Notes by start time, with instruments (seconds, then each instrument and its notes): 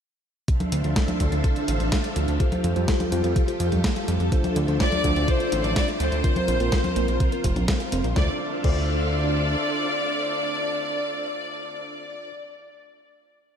0.48 synth arpeggio sound C3, string machine D4 A4 C5 E5 F5, kick, closed hi-hat
0.60 closed hi-hat, high conga
0.72 analog synth bass D2, synth arpeggio sound D3, closed hi-hat
0.84 analog synth bass D2, synth arpeggio sound F3, closed hi-hat
0.96 synth arpeggio sound A3, kick, snare, closed hi-hat
1.08 closed hi-hat, high conga
1.20 analog synth bass D2, synth arpeggio sound F3, kick, closed hi-hat
1.32 analog synth bass D2, synth arpeggio sound D3, closed hi-hat
1.44 synth arpeggio sound C3, kick, closed hi-hat
1.56 closed hi-hat
1.68 analog synth bass A1, synth arpeggio sound D3, closed hi-hat
1.80 analog synth bass A1, synth arpeggio sound F3, closed hi-hat
1.92 synth arpeggio sound A3, kick, snare, closed hi-hat
2.04 closed hi-hat
2.16 analog synth bass D2, synth arpeggio sound F3, closed hi-hat
2.28 analog synth bass D2, synth arpeggio sound D3, closed hi-hat
2.40 synth arpeggio sound C3, tine electric piano F4 G4 A4 C5, string machine F4 G4 A4, kick, closed hi-hat
2.52 closed hi-hat, high conga
2.64 analog synth bass F2, synth arpeggio sound F3, closed hi-hat
2.76 analog synth bass F2, synth arpeggio sound G3, tine electric piano F4 G4 A4 C5, closed hi-hat
2.88 synth arpeggio sound A3, kick, snare, closed hi-hat
3.00 closed hi-hat, high conga
3.12 analog synth bass F2, synth arpeggio sound G3, tine electric piano F4 G4 A4 C5, closed hi-hat
3.24 analog synth bass F2, synth arpeggio sound F3, closed hi-hat
3.36 synth arpeggio sound C3, kick, closed hi-hat
3.48 tine electric piano F4 G4 A4 C5, closed hi-hat
3.60 analog synth bass F2, synth arpeggio sound F3, closed hi-hat
3.72 analog synth bass F2, synth arpeggio sound G3, closed hi-hat, high conga
3.84 synth arpeggio sound A3, kick, snare, closed hi-hat
3.96 tine electric piano F4 G4 A4 F5, closed hi-hat
4.08 analog synth bass F2, synth arpeggio sound G3, closed hi-hat
4.20 analog synth bass F2, synth arpeggio sound F3, closed hi-hat
4.32 synth arpeggio sound C3, tine electric piano D4 F4 A4 C5, string machine D4 F4 C5 E5, kick, closed hi-hat
4.44 closed hi-hat, high conga
4.56 analog synth bass D2, synth arpeggio sound D3, closed hi-hat
4.68 analog synth bass D2, synth arpeggio sound F3, tine electric piano D4 F4 A4 C5, closed hi-hat
4.80 synth arpeggio sound A3, violin section D5, kick, snare, closed hi-hat
4.92 closed hi-hat, high conga
5.04 analog synth bass D2, synth arpeggio sound F3, tine electric piano D4 F4 A4 C5, kick, closed hi-hat
5.16 analog synth bass D2, synth arpeggio sound D3, closed hi-hat
5.28 synth arpeggio sound C3, violin section C5, kick, closed hi-hat
5.40 tine electric piano D4 F4 A4 C5, closed hi-hat
5.52 analog synth bass A1, synth arpeggio sound D3, closed hi-hat
5.64 analog synth bass A1, synth arpeggio sound F3, violin section D5, closed hi-hat
5.76 synth arpeggio sound A3, violin section D5, kick, snare, closed hi-hat
5.88 tine electric piano D4 F4 A4 E5, closed hi-hat
6.00 analog synth bass D2, synth arpeggio sound F3, violin section C5, closed hi-hat
6.12 analog synth bass D2, synth arpeggio sound D3, closed hi-hat
6.24 synth arpeggio sound C3, tine electric piano C4 F4 A#4 C5, string machine F4 A#4, kick, closed hi-hat
6.36 closed hi-hat, high conga
6.48 analog synth bass A#1, synth arpeggio sound F3, closed hi-hat
6.60 analog synth bass A#1, synth arpeggio sound A#3, tine electric piano C4 F4 A#4 C5, closed hi-hat
6.72 synth arpeggio sound C4, kick, snare, closed hi-hat
6.84 closed hi-hat, high conga
6.96 analog synth bass A#1, synth arpeggio sound A#3, tine electric piano C4 F4 A#4 C5, closed hi-hat
7.08 analog synth bass A#1, synth arpeggio sound F3, closed hi-hat
7.20 synth arpeggio sound C3, kick, closed hi-hat
7.32 tine electric piano C4 F4 A#4 C5, closed hi-hat
7.44 analog synth bass F1, synth arpeggio sound C3, kick, closed hi-hat
7.56 analog synth bass A#1, synth arpeggio sound C4, closed hi-hat, high conga
7.68 synth arpeggio sound A#4, kick, snare, closed hi-hat
7.80 tine electric piano C4 F4 A#4 F5, closed hi-hat
7.92 analog synth bass F1, synth arpeggio sound C4, closed hi-hat
8.04 analog synth bass A#1, synth arpeggio sound C4, closed hi-hat
8.16 analog synth bass D2, synth arpeggio sound C3, tine electric piano D4 F4 A4 C5, string machine D4 A4 C5 E5 F5, violin section D5, kick, snare
8.64 analog synth bass D2, synth arpeggio sound C3, tine electric piano D4 F4 A4 C5, violin section D5, kick, crash